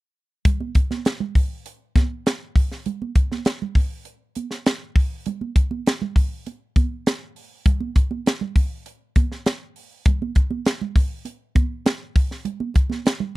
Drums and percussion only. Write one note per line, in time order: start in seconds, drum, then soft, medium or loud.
0.45 kick loud
0.45 closed hi-hat medium
0.45 low conga medium
0.60 high conga medium
0.75 kick medium
0.75 closed hi-hat medium
0.75 muted conga soft
0.91 snare soft
0.91 high conga medium
1.05 snare medium
1.05 closed hi-hat medium
1.20 low conga medium
1.35 kick medium
1.35 open hi-hat medium
1.35 muted conga soft
1.66 closed hi-hat loud
1.96 kick medium
1.96 snare soft
1.96 closed hi-hat medium
1.96 high conga medium
2.26 snare medium
2.26 closed hi-hat medium
2.26 muted conga soft
2.56 kick medium
2.56 open hi-hat medium
2.72 snare soft
2.86 closed hi-hat medium
2.86 low conga medium
3.02 high conga medium
3.15 kick medium
3.15 closed hi-hat medium
3.32 snare soft
3.32 high conga medium
3.45 snare loud
3.45 closed hi-hat medium
3.62 low conga medium
3.75 kick medium
3.75 open hi-hat medium
3.75 muted conga soft
4.05 closed hi-hat medium
4.35 closed hi-hat medium
4.35 high conga medium
4.51 snare soft
4.66 snare loud
4.66 closed hi-hat medium
4.66 muted conga soft
4.96 kick medium
4.96 open hi-hat medium
5.26 closed hi-hat medium
5.26 muted conga soft
5.26 low conga medium
5.41 high conga medium
5.56 kick medium
5.56 closed hi-hat medium
5.71 high conga medium
5.86 snare loud
5.86 closed hi-hat medium
5.86 muted conga soft
6.02 low conga medium
6.16 kick medium
6.16 open hi-hat medium
6.16 muted conga soft
6.46 closed hi-hat medium
6.46 muted conga soft
6.76 kick medium
6.76 closed hi-hat medium
6.76 muted conga soft
6.76 high conga medium
7.06 snare loud
7.06 closed hi-hat medium
7.06 muted conga soft
7.36 open hi-hat medium
7.66 kick loud
7.66 closed hi-hat medium
7.66 low conga medium
7.80 high conga medium
7.96 kick medium
7.96 closed hi-hat medium
7.96 muted conga soft
8.11 high conga medium
8.26 snare loud
8.26 closed hi-hat medium
8.26 muted conga soft
8.41 low conga medium
8.56 kick medium
8.56 open hi-hat medium
8.56 muted conga soft
8.86 closed hi-hat medium
9.16 kick medium
9.16 closed hi-hat medium
9.16 high conga medium
9.32 snare soft
9.46 snare medium
9.46 closed hi-hat medium
9.46 muted conga soft
9.76 open hi-hat medium
10.05 kick loud
10.05 closed hi-hat medium
10.05 muted conga soft
10.05 low conga medium
10.22 high conga medium
10.35 kick medium
10.35 closed hi-hat medium
10.35 muted conga soft
10.51 high conga medium
10.66 snare medium
10.66 closed hi-hat medium
10.81 low conga medium
10.96 kick medium
10.96 open hi-hat medium
10.96 muted conga soft
11.25 closed hi-hat medium
11.25 muted conga soft
11.55 kick medium
11.55 closed hi-hat medium
11.55 high conga medium
11.86 snare loud
11.86 closed hi-hat medium
11.86 muted conga soft
12.16 kick medium
12.16 open hi-hat medium
12.31 snare soft
12.45 closed hi-hat medium
12.45 low conga medium
12.60 high conga medium
12.74 kick medium
12.74 closed hi-hat medium
12.74 muted conga soft
12.90 snare soft
12.90 high conga medium
13.05 snare loud
13.05 closed hi-hat medium
13.05 muted conga soft
13.20 low conga medium